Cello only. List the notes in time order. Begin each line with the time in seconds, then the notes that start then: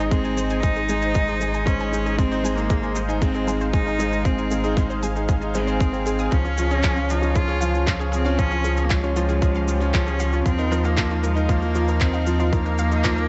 0.09 C4
0.60 D#4
1.65 C#4
2.16 C4
2.55 A#3
2.95 G#3
3.21 C4
3.73 D#4
4.24 C4
5.56 C4
6.34 C#4
7.10 D#4
7.36 F4
8.13 C4
8.38 C#4
8.84 A#3
8.90 G#3
9.94 C#4
10.44 C4
10.83 A#3
11.23 G#3
11.49 A#3
12.01 C4
12.52 A#3